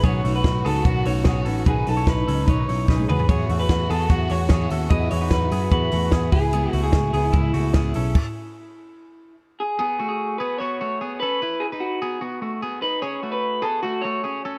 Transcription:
<<
  \new Staff \with { instrumentName = "Clean electric guitar" } { \time 4/4 \key e \major \tempo 4 = 148 cis''8. b'8. a'8 fis'8 cis''4 r8 | gis'8 a'8 b'4 cis''4. b'8 | cis''8. b'8. a'8 fis'8 cis''4 r8 | dis''8 cis''8 b'4 b'4. gis'8~ |
gis'8. gis'8. gis'8 e'2~ | e'2. r8 gis'8 | gis'8. gis'8. b'8 cis''4. b'8~ | b'8 gis'8 fis'4 r4. b'8 |
cis''8. b'8. a'8 fis'8 cis''4 r8 | }
  \new Staff \with { instrumentName = "Clean electric guitar" } { \time 4/4 \key e \major <b gis'>8 <a fis'>4 <b gis'>8 <b fis'>8 <a fis'>8 <b gis'>8 <cis' a'>8 | <dis' b'>8. <e' cis''>8. <cis' a'>8 <dis' b'>8 <e' cis''>8 <dis' b'>8 <b gis'>8 | <b gis'>8 <a fis'>4 <b gis'>8 <b fis'>8 <a fis'>8 <b gis'>8 <cis' a'>8 | <e' b'>8. <dis' b'>8. <b gis'>8 <b fis'>8 <a fis'>8 <b gis'>8 <e' b'>8 |
<b gis'>8 <a fis'>4 <b gis'>8 <gis e'>8 <a fis'>8 <b gis'>8 <cis' a'>8 | r1 | <b gis'>8 <a fis'>4 <b gis'>8 <b fis'>8 <a fis'>8 <b gis'>8 <cis' a'>8 | <e' b'>8. <dis' b'>8. <b gis'>8 <b fis'>8 <a fis'>8 <b gis'>8 <dis' b'>8 |
<cis' gis'>8 <a fis'>4 <b gis'>8 <a fis'>8 <a fis'>8 <cis' gis'>8 <cis' a'>8 | }
  \new Staff \with { instrumentName = "Violin section" } { \time 4/4 \key e \major fis'1~ | fis'4 dis'2 gis'8 fis'8~ | fis'1~ | fis'2.~ fis'8 e'8~ |
e'4 e'2 cis'4 | r1 | r1 | r1 |
r1 | }
  \new Staff \with { instrumentName = "Steel-string acoustic guitar" } { \time 4/4 \key e \major <b, dis fis cis' dis' b'>8 <fis cis' dis' b'>8 <fis cis' dis' b'>8 <fis cis' dis' b'>8 <b, dis fis cis' dis' b'>8 <fis cis' dis' b'>8 <fis cis' dis' b'>8 <fis cis' dis' b'>8 | <b, dis fis cis' dis' b'>8 <fis cis' dis' b'>8 <fis cis' dis' b'>8 <fis cis' dis' b'>8 <b, dis fis cis' dis' b'>8 <fis cis' dis' b'>8 <fis cis' dis' b'>8 <b e' gis'>8 | <e fis b e' gis'>8 <b e' gis'>8 <fis b e' gis'>8 <b e' gis'>8 <e fis b e' gis'>8 <b e' gis'>8 <fis b e' gis'>8 <b e' gis'>8 | <e fis b e' gis'>8 <b e' gis'>8 <fis b e' gis'>8 <b e' gis'>8 <e fis b e' gis'>8 <b e' gis'>8 <fis b e' gis'>8 <b e' gis'>8 |
<cis gis b e' gis'>8 <b e' gis'>8 <gis b e' gis'>8 <b e' gis'>8 <cis gis b e' gis'>8 <b e' gis'>8 <gis b e' gis'>8 <b e' gis'>8 | r1 | r1 | r1 |
r1 | }
  \new Staff \with { instrumentName = "Picked electric bass" } { \clef bass \time 4/4 \key e \major b,,8 b,,8 b,,8 cis,8 b,,8 b,,8 b,,8 a,,8 | b,,8 b,,8 b,,8 cis,8 b,,8 b,,8 b,,8 e,8~ | e,8 e,8 e,8 e,8 e,8 e,8 e,8 dis,8 | e,8 e,8 e,8 fis,8 e,8 e,8 e,8 cis,8~ |
cis,8 cis,8 cis,8 cis,8 cis,8 cis,8 cis,8 b,,8 | r1 | r1 | r1 |
r1 | }
  \new DrumStaff \with { instrumentName = "Drums" } \drummode { \time 4/4 <hhp bd cymr>8 hho8 <hhp bd cymr sn>8 hho8 <hhp bd cymr>8 hho8 <bd cymr sn>8 hho8 | <hhp bd cymr>8 hho8 <bd cymr sn>8 hho8 <hhp bd cymr>8 hho8 <bd sn>16 tommh16 toml16 tomfh16 | <hhp bd cymr>8 hho8 <hhp bd cymr sn>8 hho8 <hhp bd cymr>8 hho8 <hhp bd cymr sn>8 hho8 | <hhp bd cymr>8 hho8 <hhp bd cymr sn>8 hho8 <hhp bd cymr>8 hho8 <bd cymr sn>8 <hho bd>8 |
<hhp cymr>8 hho8 <hhp bd cymr sn>8 hho8 <hhp bd cymr>8 hho8 <bd cymr sn>8 hho8 | <cymc bd>4 r4 r4 r4 | r4 r4 r4 r4 | r4 r4 r4 r4 |
r4 r4 r4 r4 | }
>>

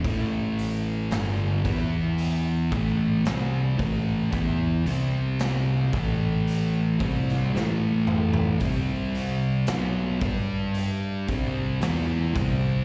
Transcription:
<<
  \new Staff \with { instrumentName = "Distorted electric guitar" } { \clef bass \time 4/4 \key a \dorian \tempo 4 = 56 <a, e a>4 <g, d g>8 <e b e'>4 <a, e a>8 <c g c'>8 <a, e a>8 | <e b e'>8 <c g c'>4 <a, e a>4 <c g c'>8 <a, e a>4 | <c g c'>4 <b, fis b>8 <g d' g'>4 <c g c'>8 <e b e'>8 <c g c'>8 | }
  \new Staff \with { instrumentName = "Distorted electric guitar" } { \clef bass \time 4/4 \key a \dorian <a, e a>4 <g, d g>8 <e b e'>4 <a, e a>8 <c g c'>8 <a, e a>8 | <e b e'>8 <c g c'>4 <a, e a>4 <c g c'>8 <a, e a>4 | <c g c'>4 <b, fis b>8 <g d' g'>4 <c g c'>8 <e b e'>8 <c g c'>8 | }
  \new Staff \with { instrumentName = "Fingered electric bass" } { \clef bass \time 4/4 \key a \dorian a,,4 g,,8 e,4 a,,8 c,8 a,,8 | e,8 c,4 a,,4 c,8 a,,4 | c,4 b,,8 g,4 c,8 e,8 c,8 | }
  \new DrumStaff \with { instrumentName = "Drums" } \drummode { \time 4/4 <hho bd>8 hho8 <hho sn>8 <hho bd>8 hho8 <hho bd>8 <hho sn>8 <hho bd>8 | <hho bd>8 hho8 <hho sn>8 <hho bd>8 hho8 <hho bd>16 sn16 sn8 toml16 tomfh16 | <hho bd>8 hho8 <hho sn>8 <hho bd>8 hho8 <hho bd>8 <hho sn>8 <hho bd>8 | }
>>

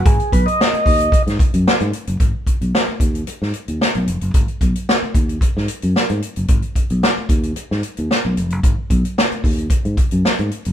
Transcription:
<<
  \new Staff \with { instrumentName = "Tonewheel organ" } { \time 4/4 \key gis \dorian \tempo 4 = 112 gis'8 b'16 dis''4. r4. r16 | r1 | r1 | r1 |
r1 | }
  \new Staff \with { instrumentName = "Fingered electric bass" } { \clef bass \time 4/4 \key gis \dorian gis,,16 r16 b,,16 r8. dis,8 r16 gis,16 r16 fis,16 r16 gis,16 r16 fis,,16 | gis,,16 r8 b,,16 r8 dis,8 r16 gis,16 r16 dis,16 r16 b,,16 eis,,16 fis,,16 | r8 b,,16 r8. dis,8 r16 gis,16 r16 fis,16 r16 gis,16 r16 fis,,16 | gis,,16 r8 b,,16 r8 dis,8 r16 gis,16 r16 dis,16 r16 b,,16 eis,,16 fis,,16 |
gis,,16 r16 b,,16 r8. dis,8 r16 gis,16 r16 fis,16 r16 gis,16 r16 fis,,16 | }
  \new DrumStaff \with { instrumentName = "Drums" } \drummode { \time 4/4 <hh bd>16 hh16 <hh bd>16 hh16 sn16 hh16 <hho bd>16 hh16 <hh bd>16 <hh sn>16 <hh bd>16 hh16 sn16 hh16 hh16 hh16 | <hh bd>8 <hh bd>16 hh16 sn8 <hh bd>16 hh16 hh16 sn16 hh16 hh16 sn16 hh16 hh16 hh16 | <hh bd>16 hh16 <hh bd>16 hh16 sn8 <hh bd>16 hh16 <hh bd>16 sn16 hh16 hh16 sn16 hh16 hh16 hh16 | <hh bd>16 hh16 <hh bd>16 hh16 sn8 <hh bd>16 hh16 hh16 sn16 hh16 hh16 sn8 hh16 hh16 |
<hh bd>8 <hh bd>16 hh16 sn16 hh16 <hho bd>16 hh16 <hh bd>16 hh16 <hh bd>16 hh16 sn16 hh16 hh16 hh16 | }
>>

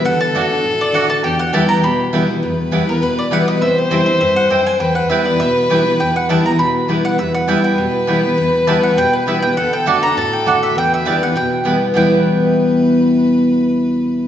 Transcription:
<<
  \new Staff \with { instrumentName = "Mandolin" } { \time 4/4 \key e \minor \tempo 4 = 202 fis''8 a''8 r4. d''8 fis''8 a''8 | g''8 fis''8 a''8 ais''8 b''4.~ b''16 r16 | r4. ais'8 b'8 d''8 fis''8 dis''8 | e''8 g'8 c''8 e''8 e''8 fis''8 g''8 gis''8 |
g''8 fis''8 e''8 d''8 e''8 r4. | g''8 fis''8 a''8 ais''8 b''4. fis''8 | e''8 fis''8 g''8 g''2~ g''8 | r4 a''8 fis''8 g''8 b'8 e''8 g''8 |
fis''8 g''8 a''8 ais''8 a''8 g''8 fis''8 e''8 | g''8 e''8 d''8 fis''8 g''4.~ g''16 r16 | g''1~ | g''1 | }
  \new Staff \with { instrumentName = "Fiddle" } { \time 4/4 \key e \minor a'1 | g'2.~ g'8 r8 | b'1 | c''1 |
b'1~ | b'2.~ b'8 r8 | b'1~ | b'1 |
a'1 | b'2.~ b'8 r8 | b'1~ | b'1 | }
  \new Staff \with { instrumentName = "Mandolin" } { \time 4/4 \key e \minor r4 <a fis' d'' fis''>8 r4. <a fis' d'' fis''>8 r8 | r4 <b e' b' g''>8 r4. <b e' b' g''>8 r8 | r4 <b e' b' g''>8 r4. <b e' b' g''>8 r8 | r4 <c' e' c'' g''>8 r4. <c' e' c'' g''>8 r8 |
r4 <b e' b' g''>8 r4. <b e' b' g''>8 r8 | r4 <b e' b' g''>8 r4. <b e' b' g''>8 r8 | r4 <b e' b' g''>8 r4. <b e' b' g''>8 r8 | r4 <b e' b' g''>8 r4. <b e' b' g''>8 r8 |
r4 <a fis' d'' fis''>8 r4. <a fis' d'' fis''>8 r8 | r4 <b e' b' g''>8 r4. <b e' b' g''>8 r8 | <b e' b' g''>1~ | <b e' b' g''>1 | }
  \new Staff \with { instrumentName = "Steel-string acoustic guitar" } { \time 4/4 \key e \minor << { r4 <d a d' fis'>8 <d' fis'>8 r4 <d a d' fis'>8 <d' fis'>8 | r4 <e g b e'>4 r4 <e g b e'>8 <b e'>8 | r4 <e g b e'>8 <b e'>8 r4 <e g b e'>4 | r4 <e g c' e'>8 <c' e'>8 r2 |
r4 <e g b e'>8 <b e'>8 r4 <e g b e'>8 <b e'>8 | r4 <e g b e'>8 <b e'>8 r4 <e g b e'>4 | r4 <e g b e'>4 r4 <e g b e'>8 <b e'>8 | r4 <e g b e'>4 r4 <e g b e'>8 <b e'>8 |
r4 <d a d' fis'>8 <d' fis'>8 r4 <d a d' fis'>4 | r4 <e g b e'>8 <b e'>8 r4 <e g b e'>4 | <e, b, e g b e'>1~ | <e, b, e g b e'>1 | } \\ { d2 a,2 | e,2 b,2 | e,2 b,2 | c2 g,4 fis,4 |
e,2 b,2 | e,2 b,2 | e,2 b,2 | e,2 b,2 |
d2 a,2 | e,2 b,2 | r1 | r1 | } >> }
>>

